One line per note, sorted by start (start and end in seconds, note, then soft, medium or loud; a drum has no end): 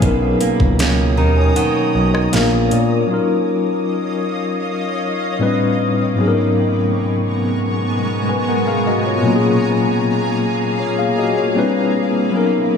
0.00 0.35 B1 loud
0.00 2.33 B2 medium
0.00 2.27 F#3 medium
0.00 2.28 B3 medium
0.00 2.29 C#4 medium
0.00 2.31 C#5 medium
0.00 2.31 A#5 medium
0.00 2.31 D#6 medium
0.00 kick loud
0.00 closed hi-hat medium
0.04 2.30 D#4 medium
0.04 2.31 A#4 medium
0.41 0.79 A#3 medium
0.41 closed hi-hat medium
0.60 1.19 C#2 medium
0.60 kick loud
0.79 1.16 D#3 medium
0.79 3.68 A#3 medium
0.79 2.41 C#4 medium
0.79 snare loud
0.79 closed hi-hat medium
1.17 1.50 D#2 medium
1.17 1.55 D#3 medium
1.17 1.36 A#5 medium
1.37 1.55 G#5 medium
1.56 2.41 D#3 medium
1.56 2.10 F#5 medium
1.56 closed hi-hat medium
1.95 2.27 B1 loud
2.14 2.32 D#5 medium
2.14 cross-stick loud
2.31 2.49 A#1 loud
2.31 3.18 A#2 medium
2.31 3.09 G#3 medium
2.31 3.09 B3 medium
2.31 3.10 D4 medium
2.31 3.10 F4 medium
2.31 3.11 A#4 medium
2.31 2.69 F5 medium
2.31 snare loud
2.31 closed hi-hat medium
2.52 2.68 A#1 medium
2.71 3.04 A#2 medium
2.71 3.07 D5 medium
2.71 closed hi-hat medium
3.07 5.35 F#3 medium
3.07 5.36 C#4 medium
3.07 5.37 D#4 medium
3.07 5.38 C#5 medium
3.07 5.38 D#5 medium
3.07 5.38 F5 medium
3.07 5.38 D#6 medium
3.12 5.38 F4 medium
3.12 5.38 A#4 medium
5.39 6.17 A2 medium
5.39 6.17 G3 medium
5.39 6.18 C4 medium
5.39 6.18 D4 medium
5.39 6.18 E4 medium
5.39 6.19 B4 medium
6.14 9.20 G#2 medium
6.14 9.20 F#3 medium
6.14 9.22 G#3 medium
6.14 9.21 B3 medium
6.14 9.22 B3 medium
6.14 11.52 G#5 medium
6.14 11.52 A#5 medium
6.14 9.22 C#6 medium
6.18 9.22 C#4 medium
6.18 9.22 D#4 medium
6.18 6.26 G#4 medium
6.28 8.11 A#4 medium
8.29 8.48 B4 medium
8.29 8.47 G#5 medium
8.48 8.67 A#4 medium
8.48 8.67 F#5 medium
8.68 8.86 G#4 medium
8.68 8.86 F5 medium
8.87 9.05 F#4 medium
8.87 9.05 D#5 medium
9.06 9.26 F4 medium
9.06 9.43 C#5 medium
9.22 11.51 A#2 medium
9.22 11.51 F#3 medium
9.22 11.52 A#3 medium
9.22 11.54 A#3 medium
9.22 11.53 C#4 medium
9.22 11.54 G#4 medium
9.22 11.54 F5 medium
9.28 10.40 F4 medium
9.28 9.34 F#4 medium
9.36 10.44 G#4 medium
10.80 10.98 F4 medium
10.80 10.98 C#5 medium
10.99 11.17 G#4 medium
10.99 11.17 F5 medium
11.18 11.37 F#4 medium
11.18 11.36 D#5 medium
11.38 11.74 F4 medium
11.38 11.74 C#5 medium
11.55 12.33 G3 medium
11.55 12.33 C4 medium
11.55 12.33 D4 medium
11.55 12.34 E4 medium
11.55 12.34 B4 medium
12.30 12.77 F#3 medium
12.30 12.77 B3 medium
12.30 12.77 C#4 medium
12.30 12.77 D#5 medium
12.30 12.77 A#5 medium
12.30 12.77 C#6 medium
12.35 12.77 D#4 medium
12.35 12.77 A#4 medium